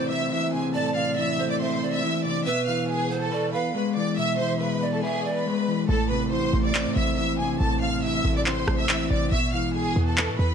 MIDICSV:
0, 0, Header, 1, 6, 480
1, 0, Start_track
1, 0, Key_signature, 0, "minor"
1, 0, Tempo, 428571
1, 837, Time_signature, 4, 2, 24, 8
1, 11810, End_track
2, 0, Start_track
2, 0, Title_t, "Violin section"
2, 0, Program_c, 0, 48
2, 114, Note_on_c, 0, 76, 81
2, 124, Note_on_c, 0, 88, 65
2, 323, Note_off_c, 0, 76, 0
2, 329, Note_off_c, 0, 88, 0
2, 356, Note_on_c, 0, 76, 77
2, 366, Note_on_c, 0, 88, 60
2, 564, Note_off_c, 0, 76, 0
2, 570, Note_off_c, 0, 88, 0
2, 597, Note_on_c, 0, 80, 70
2, 606, Note_on_c, 0, 68, 57
2, 805, Note_off_c, 0, 80, 0
2, 809, Note_off_c, 0, 68, 0
2, 834, Note_on_c, 0, 81, 87
2, 843, Note_on_c, 0, 69, 68
2, 1043, Note_off_c, 0, 81, 0
2, 1048, Note_off_c, 0, 69, 0
2, 1073, Note_on_c, 0, 77, 77
2, 1082, Note_on_c, 0, 89, 68
2, 1283, Note_off_c, 0, 77, 0
2, 1287, Note_off_c, 0, 89, 0
2, 1316, Note_on_c, 0, 76, 82
2, 1324, Note_on_c, 0, 88, 73
2, 1662, Note_off_c, 0, 76, 0
2, 1666, Note_off_c, 0, 88, 0
2, 1682, Note_on_c, 0, 74, 80
2, 1691, Note_on_c, 0, 86, 59
2, 1780, Note_off_c, 0, 74, 0
2, 1786, Note_off_c, 0, 86, 0
2, 1795, Note_on_c, 0, 72, 81
2, 1805, Note_on_c, 0, 84, 60
2, 2141, Note_off_c, 0, 72, 0
2, 2146, Note_off_c, 0, 84, 0
2, 2161, Note_on_c, 0, 76, 79
2, 2171, Note_on_c, 0, 88, 61
2, 2494, Note_off_c, 0, 76, 0
2, 2499, Note_off_c, 0, 88, 0
2, 2513, Note_on_c, 0, 74, 82
2, 2523, Note_on_c, 0, 86, 65
2, 2722, Note_off_c, 0, 74, 0
2, 2728, Note_off_c, 0, 86, 0
2, 2754, Note_on_c, 0, 76, 97
2, 2762, Note_on_c, 0, 88, 75
2, 2963, Note_off_c, 0, 76, 0
2, 2968, Note_off_c, 0, 88, 0
2, 2993, Note_on_c, 0, 77, 72
2, 3002, Note_on_c, 0, 89, 61
2, 3203, Note_off_c, 0, 77, 0
2, 3208, Note_off_c, 0, 89, 0
2, 3235, Note_on_c, 0, 68, 94
2, 3243, Note_on_c, 0, 80, 69
2, 3581, Note_off_c, 0, 68, 0
2, 3585, Note_off_c, 0, 80, 0
2, 3603, Note_on_c, 0, 69, 81
2, 3612, Note_on_c, 0, 81, 63
2, 3935, Note_off_c, 0, 69, 0
2, 3940, Note_off_c, 0, 81, 0
2, 3952, Note_on_c, 0, 71, 83
2, 3962, Note_on_c, 0, 83, 70
2, 4161, Note_off_c, 0, 71, 0
2, 4167, Note_off_c, 0, 83, 0
2, 4196, Note_on_c, 0, 71, 76
2, 4205, Note_on_c, 0, 83, 61
2, 4404, Note_off_c, 0, 71, 0
2, 4409, Note_off_c, 0, 83, 0
2, 4437, Note_on_c, 0, 74, 77
2, 4446, Note_on_c, 0, 86, 63
2, 4645, Note_off_c, 0, 74, 0
2, 4650, Note_off_c, 0, 86, 0
2, 4674, Note_on_c, 0, 76, 97
2, 4683, Note_on_c, 0, 88, 65
2, 4883, Note_off_c, 0, 76, 0
2, 4888, Note_off_c, 0, 88, 0
2, 4915, Note_on_c, 0, 72, 88
2, 4924, Note_on_c, 0, 84, 67
2, 5123, Note_off_c, 0, 72, 0
2, 5129, Note_off_c, 0, 84, 0
2, 5154, Note_on_c, 0, 71, 76
2, 5163, Note_on_c, 0, 83, 65
2, 5500, Note_off_c, 0, 71, 0
2, 5505, Note_off_c, 0, 83, 0
2, 5522, Note_on_c, 0, 69, 73
2, 5531, Note_on_c, 0, 81, 62
2, 5620, Note_off_c, 0, 69, 0
2, 5625, Note_off_c, 0, 81, 0
2, 5634, Note_on_c, 0, 68, 84
2, 5643, Note_on_c, 0, 80, 70
2, 5980, Note_off_c, 0, 68, 0
2, 5985, Note_off_c, 0, 80, 0
2, 6001, Note_on_c, 0, 71, 73
2, 6008, Note_on_c, 0, 83, 59
2, 6559, Note_off_c, 0, 71, 0
2, 6563, Note_off_c, 0, 83, 0
2, 6595, Note_on_c, 0, 69, 96
2, 6603, Note_on_c, 0, 81, 80
2, 6803, Note_off_c, 0, 69, 0
2, 6808, Note_off_c, 0, 81, 0
2, 6834, Note_on_c, 0, 71, 77
2, 6843, Note_on_c, 0, 83, 64
2, 7043, Note_off_c, 0, 71, 0
2, 7048, Note_off_c, 0, 83, 0
2, 7076, Note_on_c, 0, 72, 88
2, 7085, Note_on_c, 0, 84, 65
2, 7421, Note_off_c, 0, 72, 0
2, 7426, Note_off_c, 0, 84, 0
2, 7443, Note_on_c, 0, 74, 78
2, 7452, Note_on_c, 0, 86, 63
2, 7775, Note_off_c, 0, 74, 0
2, 7780, Note_off_c, 0, 86, 0
2, 7797, Note_on_c, 0, 76, 84
2, 7806, Note_on_c, 0, 88, 68
2, 8005, Note_off_c, 0, 76, 0
2, 8010, Note_off_c, 0, 88, 0
2, 8037, Note_on_c, 0, 76, 80
2, 8046, Note_on_c, 0, 88, 62
2, 8245, Note_off_c, 0, 76, 0
2, 8250, Note_off_c, 0, 88, 0
2, 8280, Note_on_c, 0, 80, 75
2, 8289, Note_on_c, 0, 68, 60
2, 8486, Note_off_c, 0, 80, 0
2, 8491, Note_off_c, 0, 68, 0
2, 8517, Note_on_c, 0, 81, 88
2, 8527, Note_on_c, 0, 69, 68
2, 8725, Note_off_c, 0, 81, 0
2, 8730, Note_off_c, 0, 69, 0
2, 8757, Note_on_c, 0, 77, 82
2, 8766, Note_on_c, 0, 89, 72
2, 8964, Note_off_c, 0, 77, 0
2, 8970, Note_off_c, 0, 89, 0
2, 8998, Note_on_c, 0, 76, 84
2, 9007, Note_on_c, 0, 88, 75
2, 9342, Note_off_c, 0, 76, 0
2, 9347, Note_off_c, 0, 88, 0
2, 9365, Note_on_c, 0, 74, 81
2, 9373, Note_on_c, 0, 86, 60
2, 9462, Note_off_c, 0, 74, 0
2, 9467, Note_off_c, 0, 86, 0
2, 9478, Note_on_c, 0, 72, 82
2, 9488, Note_on_c, 0, 84, 63
2, 9823, Note_off_c, 0, 72, 0
2, 9828, Note_off_c, 0, 84, 0
2, 9843, Note_on_c, 0, 76, 80
2, 9852, Note_on_c, 0, 88, 61
2, 10175, Note_off_c, 0, 76, 0
2, 10180, Note_off_c, 0, 88, 0
2, 10196, Note_on_c, 0, 74, 85
2, 10205, Note_on_c, 0, 86, 68
2, 10404, Note_off_c, 0, 74, 0
2, 10409, Note_off_c, 0, 86, 0
2, 10437, Note_on_c, 0, 76, 99
2, 10445, Note_on_c, 0, 88, 79
2, 10644, Note_off_c, 0, 76, 0
2, 10649, Note_off_c, 0, 88, 0
2, 10676, Note_on_c, 0, 77, 75
2, 10685, Note_on_c, 0, 89, 62
2, 10884, Note_off_c, 0, 77, 0
2, 10889, Note_off_c, 0, 89, 0
2, 10916, Note_on_c, 0, 68, 96
2, 10924, Note_on_c, 0, 80, 74
2, 11261, Note_off_c, 0, 68, 0
2, 11266, Note_off_c, 0, 80, 0
2, 11282, Note_on_c, 0, 69, 83
2, 11291, Note_on_c, 0, 81, 63
2, 11614, Note_off_c, 0, 69, 0
2, 11619, Note_off_c, 0, 81, 0
2, 11632, Note_on_c, 0, 71, 84
2, 11641, Note_on_c, 0, 83, 73
2, 11810, Note_off_c, 0, 71, 0
2, 11810, Note_off_c, 0, 83, 0
2, 11810, End_track
3, 0, Start_track
3, 0, Title_t, "Pan flute"
3, 0, Program_c, 1, 75
3, 118, Note_on_c, 1, 76, 78
3, 345, Note_off_c, 1, 76, 0
3, 834, Note_on_c, 1, 74, 111
3, 1512, Note_off_c, 1, 74, 0
3, 1556, Note_on_c, 1, 72, 84
3, 1785, Note_off_c, 1, 72, 0
3, 1800, Note_on_c, 1, 76, 74
3, 2026, Note_off_c, 1, 76, 0
3, 2035, Note_on_c, 1, 74, 82
3, 2264, Note_off_c, 1, 74, 0
3, 2757, Note_on_c, 1, 71, 108
3, 3434, Note_off_c, 1, 71, 0
3, 3477, Note_on_c, 1, 72, 79
3, 3705, Note_off_c, 1, 72, 0
3, 3717, Note_on_c, 1, 74, 81
3, 3945, Note_off_c, 1, 74, 0
3, 3952, Note_on_c, 1, 77, 85
3, 4182, Note_off_c, 1, 77, 0
3, 4676, Note_on_c, 1, 76, 98
3, 5353, Note_off_c, 1, 76, 0
3, 5396, Note_on_c, 1, 74, 72
3, 5624, Note_off_c, 1, 74, 0
3, 5635, Note_on_c, 1, 76, 82
3, 5864, Note_off_c, 1, 76, 0
3, 5874, Note_on_c, 1, 74, 85
3, 6103, Note_off_c, 1, 74, 0
3, 11810, End_track
4, 0, Start_track
4, 0, Title_t, "Clean electric guitar"
4, 0, Program_c, 2, 27
4, 0, Note_on_c, 2, 45, 90
4, 0, Note_on_c, 2, 48, 77
4, 0, Note_on_c, 2, 52, 84
4, 0, Note_on_c, 2, 57, 78
4, 0, Note_on_c, 2, 60, 98
4, 117, Note_off_c, 2, 45, 0
4, 343, Note_off_c, 2, 52, 0
4, 357, Note_off_c, 2, 48, 0
4, 357, Note_on_c, 2, 52, 85
4, 597, Note_on_c, 2, 48, 80
4, 837, Note_off_c, 2, 57, 0
4, 837, Note_on_c, 2, 45, 88
4, 1063, Note_off_c, 2, 48, 0
4, 1076, Note_on_c, 2, 48, 80
4, 1077, Note_off_c, 2, 60, 0
4, 1304, Note_off_c, 2, 52, 0
4, 1318, Note_on_c, 2, 52, 90
4, 1557, Note_on_c, 2, 57, 77
4, 1797, Note_on_c, 2, 60, 98
4, 2037, Note_off_c, 2, 45, 0
4, 2263, Note_off_c, 2, 52, 0
4, 2276, Note_on_c, 2, 52, 89
4, 2277, Note_off_c, 2, 48, 0
4, 2515, Note_on_c, 2, 48, 78
4, 2752, Note_off_c, 2, 48, 0
4, 2756, Note_off_c, 2, 52, 0
4, 2756, Note_on_c, 2, 47, 94
4, 2757, Note_off_c, 2, 57, 0
4, 2757, Note_off_c, 2, 60, 0
4, 2996, Note_on_c, 2, 52, 81
4, 3476, Note_on_c, 2, 59, 81
4, 3715, Note_on_c, 2, 71, 95
4, 3957, Note_off_c, 2, 47, 0
4, 4190, Note_off_c, 2, 52, 0
4, 4195, Note_on_c, 2, 56, 88
4, 4437, Note_on_c, 2, 52, 83
4, 4676, Note_off_c, 2, 59, 0
4, 4677, Note_on_c, 2, 47, 84
4, 4903, Note_off_c, 2, 52, 0
4, 4916, Note_off_c, 2, 71, 0
4, 4917, Note_on_c, 2, 52, 77
4, 5143, Note_off_c, 2, 56, 0
4, 5157, Note_on_c, 2, 56, 78
4, 5397, Note_on_c, 2, 59, 80
4, 5637, Note_on_c, 2, 71, 99
4, 5877, Note_off_c, 2, 47, 0
4, 6104, Note_off_c, 2, 56, 0
4, 6117, Note_off_c, 2, 52, 0
4, 6117, Note_on_c, 2, 56, 85
4, 6359, Note_on_c, 2, 52, 74
4, 6593, Note_off_c, 2, 52, 0
4, 6597, Note_off_c, 2, 56, 0
4, 6597, Note_off_c, 2, 59, 0
4, 6597, Note_off_c, 2, 71, 0
4, 6597, Note_on_c, 2, 45, 95
4, 6836, Note_on_c, 2, 48, 76
4, 7076, Note_on_c, 2, 52, 90
4, 7316, Note_on_c, 2, 57, 83
4, 7557, Note_on_c, 2, 60, 102
4, 7797, Note_off_c, 2, 45, 0
4, 8023, Note_off_c, 2, 52, 0
4, 8036, Note_on_c, 2, 52, 90
4, 8037, Note_off_c, 2, 48, 0
4, 8276, Note_on_c, 2, 48, 87
4, 8516, Note_off_c, 2, 57, 0
4, 8517, Note_on_c, 2, 45, 90
4, 8745, Note_off_c, 2, 48, 0
4, 8757, Note_off_c, 2, 60, 0
4, 8758, Note_on_c, 2, 48, 82
4, 8984, Note_off_c, 2, 52, 0
4, 8998, Note_on_c, 2, 52, 92
4, 9237, Note_on_c, 2, 57, 79
4, 9476, Note_on_c, 2, 60, 97
4, 9717, Note_off_c, 2, 45, 0
4, 9944, Note_off_c, 2, 52, 0
4, 9957, Note_off_c, 2, 48, 0
4, 9957, Note_on_c, 2, 52, 91
4, 10197, Note_on_c, 2, 48, 82
4, 10432, Note_off_c, 2, 48, 0
4, 10436, Note_off_c, 2, 60, 0
4, 10436, Note_on_c, 2, 47, 94
4, 10437, Note_off_c, 2, 52, 0
4, 10437, Note_off_c, 2, 57, 0
4, 10676, Note_on_c, 2, 52, 86
4, 11156, Note_on_c, 2, 59, 84
4, 11396, Note_on_c, 2, 71, 97
4, 11636, Note_off_c, 2, 47, 0
4, 11810, Note_off_c, 2, 52, 0
4, 11810, Note_off_c, 2, 59, 0
4, 11810, Note_off_c, 2, 71, 0
4, 11810, End_track
5, 0, Start_track
5, 0, Title_t, "808-style bass"
5, 0, Program_c, 3, 38
5, 6597, Note_on_c, 3, 33, 103
5, 6964, Note_on_c, 3, 32, 98
5, 6981, Note_off_c, 3, 33, 0
5, 7141, Note_on_c, 3, 33, 101
5, 7158, Note_off_c, 3, 32, 0
5, 7308, Note_off_c, 3, 33, 0
5, 7317, Note_on_c, 3, 33, 107
5, 7685, Note_on_c, 3, 45, 94
5, 7702, Note_off_c, 3, 33, 0
5, 7792, Note_off_c, 3, 45, 0
5, 7798, Note_on_c, 3, 33, 107
5, 8488, Note_off_c, 3, 33, 0
5, 8516, Note_on_c, 3, 33, 114
5, 9208, Note_off_c, 3, 33, 0
5, 9236, Note_on_c, 3, 33, 101
5, 9697, Note_off_c, 3, 33, 0
5, 9717, Note_on_c, 3, 33, 105
5, 10178, Note_off_c, 3, 33, 0
5, 10197, Note_on_c, 3, 33, 105
5, 10427, Note_off_c, 3, 33, 0
5, 10437, Note_on_c, 3, 33, 108
5, 10917, Note_on_c, 3, 36, 101
5, 10934, Note_off_c, 3, 33, 0
5, 11044, Note_on_c, 3, 33, 97
5, 11061, Note_off_c, 3, 36, 0
5, 11151, Note_off_c, 3, 33, 0
5, 11157, Note_on_c, 3, 40, 107
5, 11524, Note_on_c, 3, 45, 97
5, 11541, Note_off_c, 3, 40, 0
5, 11631, Note_off_c, 3, 45, 0
5, 11637, Note_on_c, 3, 40, 105
5, 11810, Note_off_c, 3, 40, 0
5, 11810, End_track
6, 0, Start_track
6, 0, Title_t, "Drums"
6, 7556, Note_on_c, 9, 39, 119
6, 7668, Note_off_c, 9, 39, 0
6, 9477, Note_on_c, 9, 39, 75
6, 9589, Note_off_c, 9, 39, 0
6, 9717, Note_on_c, 9, 37, 104
6, 9829, Note_off_c, 9, 37, 0
6, 9957, Note_on_c, 9, 39, 114
6, 10069, Note_off_c, 9, 39, 0
6, 11397, Note_on_c, 9, 39, 121
6, 11509, Note_off_c, 9, 39, 0
6, 11810, End_track
0, 0, End_of_file